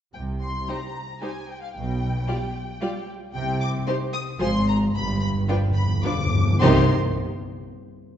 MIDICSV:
0, 0, Header, 1, 7, 480
1, 0, Start_track
1, 0, Key_signature, -3, "minor"
1, 0, Tempo, 533333
1, 135, Time_signature, 3, 2, 24, 8
1, 4454, Tempo, 559701
1, 7218, End_track
2, 0, Start_track
2, 0, Title_t, "Violin section"
2, 0, Program_c, 0, 48
2, 123, Note_on_c, 0, 79, 54
2, 195, Note_off_c, 0, 79, 0
2, 375, Note_on_c, 0, 84, 63
2, 614, Note_off_c, 0, 84, 0
2, 614, Note_on_c, 0, 82, 60
2, 1086, Note_on_c, 0, 80, 58
2, 1097, Note_off_c, 0, 82, 0
2, 1327, Note_on_c, 0, 79, 62
2, 1328, Note_off_c, 0, 80, 0
2, 1454, Note_off_c, 0, 79, 0
2, 1456, Note_on_c, 0, 77, 55
2, 1563, Note_on_c, 0, 79, 67
2, 1576, Note_off_c, 0, 77, 0
2, 2747, Note_off_c, 0, 79, 0
2, 3006, Note_on_c, 0, 79, 86
2, 3232, Note_off_c, 0, 79, 0
2, 3246, Note_on_c, 0, 86, 97
2, 3318, Note_off_c, 0, 86, 0
2, 3483, Note_on_c, 0, 84, 73
2, 3555, Note_off_c, 0, 84, 0
2, 3722, Note_on_c, 0, 87, 99
2, 3794, Note_off_c, 0, 87, 0
2, 3963, Note_on_c, 0, 84, 97
2, 4203, Note_off_c, 0, 84, 0
2, 4211, Note_on_c, 0, 82, 90
2, 4283, Note_off_c, 0, 82, 0
2, 4458, Note_on_c, 0, 83, 98
2, 4667, Note_off_c, 0, 83, 0
2, 4677, Note_on_c, 0, 83, 96
2, 4746, Note_off_c, 0, 83, 0
2, 4913, Note_on_c, 0, 79, 79
2, 4981, Note_off_c, 0, 79, 0
2, 5136, Note_on_c, 0, 83, 91
2, 5383, Note_off_c, 0, 83, 0
2, 5390, Note_on_c, 0, 86, 88
2, 5864, Note_on_c, 0, 84, 99
2, 5881, Note_off_c, 0, 86, 0
2, 6142, Note_off_c, 0, 84, 0
2, 7218, End_track
3, 0, Start_track
3, 0, Title_t, "Violin section"
3, 0, Program_c, 1, 48
3, 626, Note_on_c, 1, 72, 40
3, 627, Note_on_c, 1, 67, 37
3, 698, Note_off_c, 1, 72, 0
3, 699, Note_off_c, 1, 67, 0
3, 1099, Note_on_c, 1, 67, 42
3, 1100, Note_on_c, 1, 72, 41
3, 1171, Note_off_c, 1, 67, 0
3, 1172, Note_off_c, 1, 72, 0
3, 2051, Note_on_c, 1, 67, 53
3, 2056, Note_on_c, 1, 74, 48
3, 2123, Note_off_c, 1, 67, 0
3, 2128, Note_off_c, 1, 74, 0
3, 2529, Note_on_c, 1, 67, 54
3, 2532, Note_on_c, 1, 74, 56
3, 2601, Note_off_c, 1, 67, 0
3, 2604, Note_off_c, 1, 74, 0
3, 3484, Note_on_c, 1, 67, 61
3, 3485, Note_on_c, 1, 72, 64
3, 3556, Note_off_c, 1, 67, 0
3, 3557, Note_off_c, 1, 72, 0
3, 3957, Note_on_c, 1, 68, 60
3, 3959, Note_on_c, 1, 72, 66
3, 4029, Note_off_c, 1, 68, 0
3, 4031, Note_off_c, 1, 72, 0
3, 4917, Note_on_c, 1, 65, 62
3, 4917, Note_on_c, 1, 71, 59
3, 4985, Note_off_c, 1, 65, 0
3, 4986, Note_off_c, 1, 71, 0
3, 5387, Note_on_c, 1, 71, 57
3, 5390, Note_on_c, 1, 65, 57
3, 5456, Note_off_c, 1, 71, 0
3, 5458, Note_off_c, 1, 65, 0
3, 5875, Note_on_c, 1, 72, 76
3, 5878, Note_on_c, 1, 67, 78
3, 6148, Note_off_c, 1, 72, 0
3, 6149, Note_off_c, 1, 67, 0
3, 7218, End_track
4, 0, Start_track
4, 0, Title_t, "Viola section"
4, 0, Program_c, 2, 48
4, 614, Note_on_c, 2, 55, 39
4, 614, Note_on_c, 2, 63, 40
4, 686, Note_off_c, 2, 55, 0
4, 686, Note_off_c, 2, 63, 0
4, 1091, Note_on_c, 2, 55, 43
4, 1095, Note_on_c, 2, 63, 44
4, 1163, Note_off_c, 2, 55, 0
4, 1167, Note_off_c, 2, 63, 0
4, 2049, Note_on_c, 2, 65, 48
4, 2051, Note_on_c, 2, 55, 46
4, 2121, Note_off_c, 2, 65, 0
4, 2123, Note_off_c, 2, 55, 0
4, 2527, Note_on_c, 2, 65, 57
4, 2529, Note_on_c, 2, 55, 56
4, 2599, Note_off_c, 2, 65, 0
4, 2601, Note_off_c, 2, 55, 0
4, 3482, Note_on_c, 2, 55, 54
4, 3483, Note_on_c, 2, 63, 58
4, 3554, Note_off_c, 2, 55, 0
4, 3555, Note_off_c, 2, 63, 0
4, 3957, Note_on_c, 2, 65, 62
4, 3958, Note_on_c, 2, 53, 61
4, 4029, Note_off_c, 2, 65, 0
4, 4030, Note_off_c, 2, 53, 0
4, 4919, Note_on_c, 2, 62, 60
4, 4923, Note_on_c, 2, 53, 58
4, 4987, Note_off_c, 2, 62, 0
4, 4991, Note_off_c, 2, 53, 0
4, 5397, Note_on_c, 2, 62, 56
4, 5398, Note_on_c, 2, 53, 53
4, 5466, Note_off_c, 2, 62, 0
4, 5467, Note_off_c, 2, 53, 0
4, 5885, Note_on_c, 2, 63, 82
4, 5886, Note_on_c, 2, 51, 81
4, 6153, Note_off_c, 2, 63, 0
4, 6154, Note_off_c, 2, 51, 0
4, 7218, End_track
5, 0, Start_track
5, 0, Title_t, "Cello section"
5, 0, Program_c, 3, 48
5, 127, Note_on_c, 3, 48, 52
5, 536, Note_off_c, 3, 48, 0
5, 1579, Note_on_c, 3, 47, 66
5, 1980, Note_off_c, 3, 47, 0
5, 3014, Note_on_c, 3, 48, 82
5, 3411, Note_off_c, 3, 48, 0
5, 3967, Note_on_c, 3, 44, 71
5, 4370, Note_off_c, 3, 44, 0
5, 4446, Note_on_c, 3, 43, 80
5, 4840, Note_off_c, 3, 43, 0
5, 5883, Note_on_c, 3, 48, 91
5, 6152, Note_off_c, 3, 48, 0
5, 7218, End_track
6, 0, Start_track
6, 0, Title_t, "Timpani"
6, 0, Program_c, 4, 47
6, 4447, Note_on_c, 4, 43, 33
6, 4499, Note_off_c, 4, 43, 0
6, 4509, Note_on_c, 4, 43, 34
6, 4567, Note_off_c, 4, 43, 0
6, 4712, Note_on_c, 4, 43, 39
6, 4762, Note_off_c, 4, 43, 0
6, 4772, Note_on_c, 4, 43, 42
6, 4828, Note_off_c, 4, 43, 0
6, 4838, Note_on_c, 4, 43, 42
6, 4895, Note_off_c, 4, 43, 0
6, 4905, Note_on_c, 4, 43, 47
6, 4956, Note_off_c, 4, 43, 0
6, 4967, Note_on_c, 4, 43, 50
6, 5026, Note_off_c, 4, 43, 0
6, 5037, Note_on_c, 4, 43, 54
6, 5091, Note_off_c, 4, 43, 0
6, 5101, Note_on_c, 4, 43, 59
6, 5158, Note_off_c, 4, 43, 0
6, 5168, Note_on_c, 4, 43, 60
6, 5224, Note_off_c, 4, 43, 0
6, 5234, Note_on_c, 4, 43, 61
6, 5296, Note_off_c, 4, 43, 0
6, 5306, Note_on_c, 4, 43, 67
6, 5363, Note_off_c, 4, 43, 0
6, 5373, Note_on_c, 4, 43, 69
6, 5428, Note_off_c, 4, 43, 0
6, 5438, Note_on_c, 4, 43, 73
6, 5498, Note_off_c, 4, 43, 0
6, 5508, Note_on_c, 4, 43, 80
6, 5570, Note_off_c, 4, 43, 0
6, 5580, Note_on_c, 4, 43, 82
6, 5639, Note_off_c, 4, 43, 0
6, 5649, Note_on_c, 4, 43, 92
6, 5712, Note_off_c, 4, 43, 0
6, 5722, Note_on_c, 4, 43, 96
6, 5777, Note_off_c, 4, 43, 0
6, 5787, Note_on_c, 4, 43, 92
6, 5851, Note_off_c, 4, 43, 0
6, 5881, Note_on_c, 4, 48, 94
6, 6106, Note_off_c, 4, 48, 0
6, 7218, End_track
7, 0, Start_track
7, 0, Title_t, "Double bass section"
7, 0, Program_c, 5, 48
7, 132, Note_on_c, 5, 36, 51
7, 539, Note_off_c, 5, 36, 0
7, 1577, Note_on_c, 5, 35, 56
7, 1979, Note_off_c, 5, 35, 0
7, 3015, Note_on_c, 5, 36, 70
7, 3412, Note_off_c, 5, 36, 0
7, 3968, Note_on_c, 5, 32, 75
7, 4371, Note_off_c, 5, 32, 0
7, 4450, Note_on_c, 5, 31, 79
7, 4842, Note_off_c, 5, 31, 0
7, 5889, Note_on_c, 5, 36, 85
7, 6155, Note_off_c, 5, 36, 0
7, 7218, End_track
0, 0, End_of_file